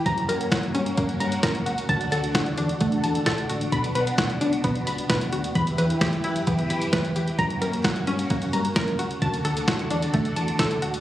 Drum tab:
HH |xxxxxxxxxxxxxxxx|xxxxxxxxxxxxxxxx|xxxxxxxxxxxxxxxx|xxxxxxxxxxxxxxxx|
SD |----o-------o---|----o-------o---|----o-------o---|----o-------o---|
BD |o---o---o---o---|o---o---o---o---|o---o---o---o---|o---o---o---o---|

HH |xxxxxxxxxxxxxxxx|xxxxxxxxxxxxxxxx|
SD |----o-------o---|----o-------o---|
BD |o---o---o---o---|o---o---o---o---|